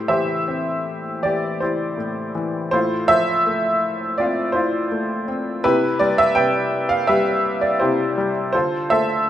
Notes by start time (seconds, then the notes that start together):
Already playing: A2 E4 G4 C5
0.08 E3 G4 C5 E5
0.48 C4
1.23 E3 G4 D5
1.60 E4 G4 C5
1.98 A2
2.35 E3
2.71 A2 E4 F4 C5
3.08 F3 C5 E5
3.46 A3
4.18 C4 F4 D5
4.52 E4 F4 C5
4.92 A3
5.28 C4
5.64 C3 E4 G4 B4
5.99 G3 D5
6.18 E5
6.35 C3 B4 E5 G5
6.89 F5
7.07 G3 G4 B4 E5
7.61 D5
7.79 C3 E4 G4 C5
8.17 G3
8.53 D3 F4 A4 C5
8.90 A3 A4 C5 E5